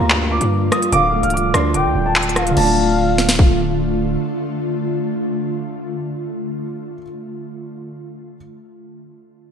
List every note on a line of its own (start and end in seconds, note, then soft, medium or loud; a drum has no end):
0.00 0.39 D2 loud
0.00 0.10 G2 medium
0.00 0.70 F3 medium
0.00 0.51 G3 medium
0.00 0.91 G3 medium
0.00 0.92 A#3 loud
0.00 2.53 F4 medium
0.00 0.91 A#4 medium
0.00 0.28 A#5 medium
0.10 0.92 G2 medium
0.10 clap loud
0.31 0.69 D6 medium
0.41 0.71 G2 loud
0.41 closed hi-hat medium
0.71 0.92 F3 medium
0.71 0.90 D#6 medium
0.71 cross-stick loud
0.71 closed hi-hat medium
0.82 closed hi-hat medium
0.92 1.22 D1 loud
0.92 2.55 D3 medium
0.92 1.73 D3 medium
0.92 2.55 A3 medium
0.92 1.31 F5 loud
0.92 1.21 D6 loud
0.92 closed hi-hat medium
1.13 2.16 A3 medium
1.23 1.53 C1 loud
1.23 1.32 F6 medium
1.23 closed hi-hat soft
1.30 2.35 F3 medium
1.30 1.51 D6 medium
1.30 closed hi-hat medium
1.37 closed hi-hat medium
1.54 1.76 D2 loud
1.54 2.57 D4 loud
1.54 1.72 C6 medium
1.54 cross-stick loud
1.54 closed hi-hat medium
1.74 1.86 C1 loud
1.74 2.49 D3 medium
1.74 2.33 G5 loud
1.74 2.04 D6 medium
1.74 closed hi-hat medium
1.85 1.95 D2 loud
1.95 2.54 D1 loud
2.06 2.54 A5 medium
2.16 clap loud
2.16 closed hi-hat medium
2.23 closed hi-hat medium
2.29 closed hi-hat medium
2.36 2.53 F3 medium
2.36 2.56 F5 medium
2.36 cross-stick loud
2.36 closed hi-hat medium
2.47 closed hi-hat medium
2.51 6.92 D3 medium
2.51 6.96 F3 medium
2.57 4.17 D1 loud
2.57 6.62 D3 medium
2.57 6.62 A3 medium
2.57 7.00 A3 medium
2.57 6.62 F4 medium
2.57 3.76 F5 loud
2.57 3.76 A5 medium
2.57 crash medium
2.63 7.04 D4 medium
3.18 snare medium
3.29 snare medium
3.39 kick medium